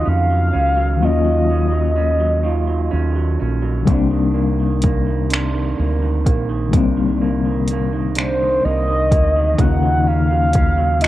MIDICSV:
0, 0, Header, 1, 6, 480
1, 0, Start_track
1, 0, Key_signature, -3, "minor"
1, 0, Tempo, 952381
1, 510, Time_signature, 6, 3, 24, 8
1, 5583, End_track
2, 0, Start_track
2, 0, Title_t, "Soft synth lead"
2, 0, Program_c, 0, 80
2, 40, Note_on_c, 0, 77, 105
2, 526, Note_on_c, 0, 75, 84
2, 534, Note_off_c, 0, 77, 0
2, 1718, Note_off_c, 0, 75, 0
2, 4116, Note_on_c, 0, 72, 84
2, 4356, Note_on_c, 0, 75, 111
2, 4364, Note_off_c, 0, 72, 0
2, 4838, Note_on_c, 0, 78, 105
2, 4846, Note_off_c, 0, 75, 0
2, 5077, Note_on_c, 0, 77, 124
2, 5085, Note_off_c, 0, 78, 0
2, 5553, Note_on_c, 0, 75, 99
2, 5561, Note_off_c, 0, 77, 0
2, 5583, Note_off_c, 0, 75, 0
2, 5583, End_track
3, 0, Start_track
3, 0, Title_t, "Reed electric piano"
3, 0, Program_c, 1, 4
3, 0, Control_c, 1, 64, 127
3, 0, Note_on_c, 1, 49, 50
3, 0, Note_on_c, 1, 51, 57
3, 0, Note_on_c, 1, 58, 46
3, 0, Note_on_c, 1, 61, 46
3, 0, Note_on_c, 1, 63, 61
3, 476, Note_off_c, 1, 51, 0
3, 483, Note_off_c, 1, 49, 0
3, 485, Note_on_c, 1, 51, 58
3, 491, Note_off_c, 1, 58, 0
3, 499, Note_off_c, 1, 61, 0
3, 502, Note_on_c, 1, 54, 47
3, 507, Note_off_c, 1, 63, 0
3, 517, Note_on_c, 1, 58, 48
3, 531, Note_on_c, 1, 61, 52
3, 547, Note_on_c, 1, 65, 57
3, 1918, Note_off_c, 1, 51, 0
3, 1926, Note_off_c, 1, 54, 0
3, 1928, Note_on_c, 1, 50, 51
3, 1933, Note_off_c, 1, 58, 0
3, 1941, Note_off_c, 1, 61, 0
3, 1943, Note_on_c, 1, 55, 58
3, 1948, Note_off_c, 1, 65, 0
3, 1956, Control_c, 1, 64, 0
3, 1958, Note_on_c, 1, 58, 58
3, 1962, Note_on_c, 1, 48, 58
3, 1972, Note_off_c, 1, 50, 0
3, 1974, Note_on_c, 1, 60, 62
3, 1988, Note_on_c, 1, 62, 69
3, 2036, Control_c, 1, 64, 127
3, 3366, Note_off_c, 1, 55, 0
3, 3369, Note_on_c, 1, 50, 46
3, 3374, Note_off_c, 1, 58, 0
3, 3376, Note_off_c, 1, 48, 0
3, 3382, Note_off_c, 1, 60, 0
3, 3382, Note_on_c, 1, 55, 63
3, 3389, Note_off_c, 1, 62, 0
3, 3397, Note_on_c, 1, 58, 64
3, 3400, Note_on_c, 1, 48, 66
3, 3412, Note_off_c, 1, 50, 0
3, 3412, Note_on_c, 1, 60, 59
3, 4806, Note_off_c, 1, 55, 0
3, 4808, Note_on_c, 1, 51, 59
3, 4813, Note_off_c, 1, 58, 0
3, 4815, Note_off_c, 1, 48, 0
3, 4821, Note_off_c, 1, 60, 0
3, 4822, Note_on_c, 1, 49, 55
3, 4838, Control_c, 1, 64, 0
3, 4838, Note_on_c, 1, 58, 50
3, 4854, Note_on_c, 1, 61, 48
3, 4869, Note_on_c, 1, 63, 58
3, 4918, Control_c, 1, 64, 127
3, 5583, Note_off_c, 1, 49, 0
3, 5583, Note_off_c, 1, 51, 0
3, 5583, Note_off_c, 1, 58, 0
3, 5583, Note_off_c, 1, 61, 0
3, 5583, Note_off_c, 1, 63, 0
3, 5583, End_track
4, 0, Start_track
4, 0, Title_t, "Clean electric guitar"
4, 0, Program_c, 2, 27
4, 0, Note_on_c, 2, 51, 64
4, 0, Note_on_c, 2, 54, 47
4, 0, Note_on_c, 2, 65, 56
4, 28, Note_on_c, 2, 61, 51
4, 143, Note_off_c, 2, 54, 0
4, 149, Note_on_c, 2, 54, 47
4, 262, Note_off_c, 2, 61, 0
4, 268, Note_on_c, 2, 61, 50
4, 378, Note_off_c, 2, 54, 0
4, 384, Note_on_c, 2, 54, 50
4, 509, Note_off_c, 2, 65, 0
4, 510, Note_off_c, 2, 51, 0
4, 512, Note_on_c, 2, 51, 68
4, 517, Note_on_c, 2, 65, 65
4, 622, Note_off_c, 2, 54, 0
4, 628, Note_on_c, 2, 54, 51
4, 749, Note_off_c, 2, 61, 0
4, 755, Note_on_c, 2, 61, 48
4, 858, Note_off_c, 2, 54, 0
4, 864, Note_on_c, 2, 54, 52
4, 981, Note_off_c, 2, 61, 0
4, 987, Note_on_c, 2, 61, 52
4, 1102, Note_off_c, 2, 54, 0
4, 1108, Note_on_c, 2, 54, 52
4, 1223, Note_off_c, 2, 65, 0
4, 1224, Note_off_c, 2, 51, 0
4, 1226, Note_on_c, 2, 51, 66
4, 1231, Note_on_c, 2, 65, 51
4, 1341, Note_off_c, 2, 54, 0
4, 1347, Note_on_c, 2, 54, 47
4, 1461, Note_off_c, 2, 61, 0
4, 1467, Note_on_c, 2, 61, 50
4, 1585, Note_off_c, 2, 54, 0
4, 1591, Note_on_c, 2, 54, 52
4, 1707, Note_off_c, 2, 61, 0
4, 1713, Note_on_c, 2, 61, 43
4, 1819, Note_off_c, 2, 54, 0
4, 1825, Note_on_c, 2, 54, 46
4, 1950, Note_off_c, 2, 51, 0
4, 1950, Note_off_c, 2, 65, 0
4, 1952, Note_on_c, 2, 48, 69
4, 1957, Note_on_c, 2, 62, 60
4, 1996, Note_off_c, 2, 54, 0
4, 2000, Note_off_c, 2, 61, 0
4, 2070, Note_on_c, 2, 51, 52
4, 2187, Note_on_c, 2, 58, 46
4, 2314, Note_off_c, 2, 51, 0
4, 2316, Note_on_c, 2, 51, 45
4, 2432, Note_off_c, 2, 58, 0
4, 2434, Note_on_c, 2, 58, 50
4, 2552, Note_off_c, 2, 51, 0
4, 2554, Note_on_c, 2, 51, 52
4, 2666, Note_off_c, 2, 48, 0
4, 2668, Note_off_c, 2, 62, 0
4, 2671, Note_on_c, 2, 48, 65
4, 2675, Note_on_c, 2, 62, 52
4, 2792, Note_off_c, 2, 51, 0
4, 2794, Note_on_c, 2, 51, 48
4, 2911, Note_off_c, 2, 58, 0
4, 2913, Note_on_c, 2, 58, 52
4, 3033, Note_off_c, 2, 51, 0
4, 3035, Note_on_c, 2, 51, 50
4, 3156, Note_off_c, 2, 58, 0
4, 3158, Note_on_c, 2, 58, 49
4, 3270, Note_off_c, 2, 51, 0
4, 3272, Note_on_c, 2, 51, 55
4, 3389, Note_off_c, 2, 48, 0
4, 3392, Note_off_c, 2, 62, 0
4, 3395, Note_on_c, 2, 48, 76
4, 3398, Note_on_c, 2, 62, 58
4, 3511, Note_off_c, 2, 51, 0
4, 3513, Note_on_c, 2, 51, 53
4, 3634, Note_off_c, 2, 58, 0
4, 3636, Note_on_c, 2, 58, 53
4, 3752, Note_off_c, 2, 51, 0
4, 3754, Note_on_c, 2, 51, 50
4, 3884, Note_off_c, 2, 58, 0
4, 3886, Note_on_c, 2, 58, 54
4, 3995, Note_off_c, 2, 51, 0
4, 3997, Note_on_c, 2, 51, 49
4, 4107, Note_off_c, 2, 48, 0
4, 4110, Note_off_c, 2, 62, 0
4, 4113, Note_on_c, 2, 48, 68
4, 4116, Note_on_c, 2, 62, 53
4, 4233, Note_off_c, 2, 51, 0
4, 4235, Note_on_c, 2, 51, 53
4, 4358, Note_off_c, 2, 58, 0
4, 4360, Note_on_c, 2, 58, 55
4, 4471, Note_off_c, 2, 51, 0
4, 4473, Note_on_c, 2, 51, 53
4, 4590, Note_off_c, 2, 58, 0
4, 4592, Note_on_c, 2, 58, 48
4, 4717, Note_off_c, 2, 51, 0
4, 4719, Note_on_c, 2, 51, 51
4, 4831, Note_off_c, 2, 48, 0
4, 4833, Note_off_c, 2, 62, 0
4, 4837, Note_off_c, 2, 51, 0
4, 4837, Note_on_c, 2, 51, 67
4, 4842, Note_on_c, 2, 65, 58
4, 4952, Note_on_c, 2, 54, 54
4, 5074, Note_off_c, 2, 58, 0
4, 5076, Note_on_c, 2, 61, 56
4, 5188, Note_off_c, 2, 54, 0
4, 5194, Note_on_c, 2, 54, 54
4, 5300, Note_off_c, 2, 61, 0
4, 5306, Note_on_c, 2, 61, 53
4, 5425, Note_off_c, 2, 54, 0
4, 5432, Note_on_c, 2, 54, 51
4, 5545, Note_off_c, 2, 65, 0
4, 5547, Note_off_c, 2, 51, 0
4, 5549, Note_on_c, 2, 51, 69
4, 5551, Note_on_c, 2, 65, 58
4, 5583, Note_off_c, 2, 51, 0
4, 5583, Note_off_c, 2, 54, 0
4, 5583, Note_off_c, 2, 61, 0
4, 5583, Note_off_c, 2, 65, 0
4, 5583, End_track
5, 0, Start_track
5, 0, Title_t, "Fingered electric bass"
5, 0, Program_c, 3, 33
5, 36, Note_on_c, 3, 41, 79
5, 253, Note_off_c, 3, 41, 0
5, 277, Note_on_c, 3, 37, 79
5, 515, Note_off_c, 3, 37, 0
5, 515, Note_on_c, 3, 39, 88
5, 1453, Note_off_c, 3, 39, 0
5, 1477, Note_on_c, 3, 39, 74
5, 1693, Note_off_c, 3, 39, 0
5, 1720, Note_on_c, 3, 34, 79
5, 1935, Note_off_c, 3, 34, 0
5, 1956, Note_on_c, 3, 36, 83
5, 2893, Note_off_c, 3, 36, 0
5, 2920, Note_on_c, 3, 38, 73
5, 3160, Note_off_c, 3, 38, 0
5, 3160, Note_on_c, 3, 34, 76
5, 3397, Note_off_c, 3, 34, 0
5, 3397, Note_on_c, 3, 36, 82
5, 4333, Note_off_c, 3, 36, 0
5, 4360, Note_on_c, 3, 36, 78
5, 4599, Note_off_c, 3, 36, 0
5, 4599, Note_on_c, 3, 38, 74
5, 4814, Note_off_c, 3, 38, 0
5, 4835, Note_on_c, 3, 39, 95
5, 5583, Note_off_c, 3, 39, 0
5, 5583, End_track
6, 0, Start_track
6, 0, Title_t, "Drums"
6, 1952, Note_on_c, 9, 36, 98
6, 1954, Note_on_c, 9, 42, 58
6, 2002, Note_off_c, 9, 36, 0
6, 2004, Note_off_c, 9, 42, 0
6, 2429, Note_on_c, 9, 42, 71
6, 2438, Note_on_c, 9, 36, 73
6, 2479, Note_off_c, 9, 42, 0
6, 2489, Note_off_c, 9, 36, 0
6, 2673, Note_on_c, 9, 42, 63
6, 2689, Note_on_c, 9, 26, 93
6, 2724, Note_off_c, 9, 42, 0
6, 2739, Note_off_c, 9, 26, 0
6, 3156, Note_on_c, 9, 36, 76
6, 3158, Note_on_c, 9, 42, 62
6, 3207, Note_off_c, 9, 36, 0
6, 3209, Note_off_c, 9, 42, 0
6, 3393, Note_on_c, 9, 36, 94
6, 3394, Note_on_c, 9, 42, 63
6, 3443, Note_off_c, 9, 36, 0
6, 3444, Note_off_c, 9, 42, 0
6, 3869, Note_on_c, 9, 42, 72
6, 3919, Note_off_c, 9, 42, 0
6, 4109, Note_on_c, 9, 42, 61
6, 4125, Note_on_c, 9, 26, 85
6, 4159, Note_off_c, 9, 42, 0
6, 4175, Note_off_c, 9, 26, 0
6, 4594, Note_on_c, 9, 36, 82
6, 4596, Note_on_c, 9, 42, 62
6, 4645, Note_off_c, 9, 36, 0
6, 4646, Note_off_c, 9, 42, 0
6, 4831, Note_on_c, 9, 36, 98
6, 4833, Note_on_c, 9, 42, 60
6, 4881, Note_off_c, 9, 36, 0
6, 4883, Note_off_c, 9, 42, 0
6, 5309, Note_on_c, 9, 42, 74
6, 5317, Note_on_c, 9, 36, 83
6, 5359, Note_off_c, 9, 42, 0
6, 5367, Note_off_c, 9, 36, 0
6, 5549, Note_on_c, 9, 42, 60
6, 5565, Note_on_c, 9, 26, 82
6, 5583, Note_off_c, 9, 26, 0
6, 5583, Note_off_c, 9, 42, 0
6, 5583, End_track
0, 0, End_of_file